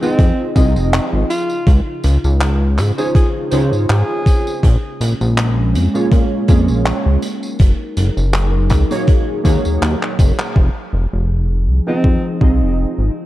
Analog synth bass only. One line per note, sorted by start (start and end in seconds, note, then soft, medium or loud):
0.19 0.33 F2 medium
0.56 0.78 C2 loud
0.76 1.00 F1 medium
1.13 1.24 G#1 loud
1.67 1.81 C#2 loud
2.04 2.18 C#2 loud
2.24 2.80 C#2 medium
2.78 2.92 G#2 medium
3.52 3.72 C#2 loud
3.73 3.86 G#2 soft
3.90 4.03 G#2 medium
4.63 4.77 A#1 loud
5.01 5.14 A#1 loud
5.21 5.76 A#1 loud
5.75 5.88 F2 medium
6.12 6.25 A#2 medium
6.49 6.71 F2 loud
6.69 6.93 A#1 medium
7.06 7.17 C#2 loud
7.60 7.73 F#1 loud
7.97 8.10 F#1 loud
8.17 8.72 F#1 loud
8.71 8.84 C#2 medium
9.45 9.59 D#2 loud
9.65 9.79 D#2 soft
9.82 9.96 D#2 medium
10.19 10.33 F#1 medium
10.56 10.70 F1 loud
10.93 11.07 F1 medium
11.13 11.68 F1 loud
11.67 11.81 C2 medium
12.04 12.18 F2 medium
12.41 12.63 C2 loud
12.62 12.85 F1 medium
12.98 13.10 G#1 loud